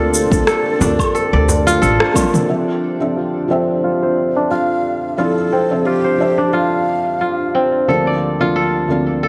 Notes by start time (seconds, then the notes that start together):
Already playing: D2 A#3 C4 D4 F4 G4 A4 C5 D5
0.14 shaker
0.31 D2 A#3 C4 D4 F4, kick, shaker
0.47 A4, cross-stick, shaker
0.66 darbuka ka
0.79 D2 A#3 C4 D4 F4, darbuka tek, darbuka dum, shaker
0.99 kick, low woodblock, shaker
1.15 A4, shaker
1.33 D2 D5, darbuka tek
1.49 darbuka tek, darbuka dum, shaker
1.67 F4, shaker
1.82 A1 A4, shaker
2.00 cross-stick
2.14 A#3 C4 D4 F4 A4, kick, high tom, darbuka ka, darbuka tek, low woodblock, shaker
2.34 mid tom, shaker
2.48 F3 C4 D4 F4 A4 E5
3.00 F3 C4 D4 A4 E5
3.16 F4
3.48 F3 C4 D4 A4 E5
3.84 F4
4.03 C5
4.36 D4
4.51 F4 F5
5.18 F3 C4 D4 E4 F4 A4
5.52 C4
5.70 F3 C4 D4 C5 E5
5.85 F4 G4
6.04 C5
6.18 F3 C4 D4 E5
6.22 C5
6.38 D4
6.53 F4 F5
7.21 F4
7.55 C4
7.88 D2 D3 F3 A#3 C4 D4 A4
8.07 D5
8.15 D4
8.40 D2 F3 A#3 C4 D4 F4 A4
8.51 C5
8.56 A4
8.87 D2 F3 A#3 C4 D4 G4
8.91 A4
9.23 A4